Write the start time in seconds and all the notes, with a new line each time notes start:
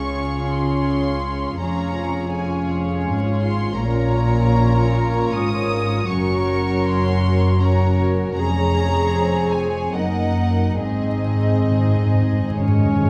Already playing: C#2 C#3 C#4 F4 G#4 C#5 C#6
0.50 C6
1.60 F1 F2 C#4 F4 G#4 C#5 A#5
2.32 C#4 F4 G#4 C#5 G#5
3.06 G#1 G#2
3.41 C6
3.78 A#1 A#2 C#4 F4 A#4 C#5 A#5
5.33 G#1 G#2 D#6
6.09 F#1 F#2 C#4 F#4 A#4 C#5 C#6
6.85 C6
7.61 C#4 F#4 A#4 C#5 A#5
8.34 F1 F2 C#4 G#4 C#5 A#5
9.14 C4
9.52 G#5
9.93 F#1 F#2 A#3 D#4 A#4 D#5 F#5
10.81 G#1 G#2 C4 D#4 G#4 D#5
10.91 G#2
11.01 G#2
11.09 G#2
11.18 G#2
11.27 G#2
11.35 G#2
11.43 G#2
11.62 G#2
11.71 G#2
11.79 G#2
11.88 G#2
11.96 G#2
12.06 G#2
12.14 G#2
12.23 G#2
12.33 G#2
12.43 G#2
12.50 G#2
12.59 G#2 G#3 C#4 C#5
12.68 G#2
12.78 G#2
12.86 G#2
12.95 G#2
13.05 G#2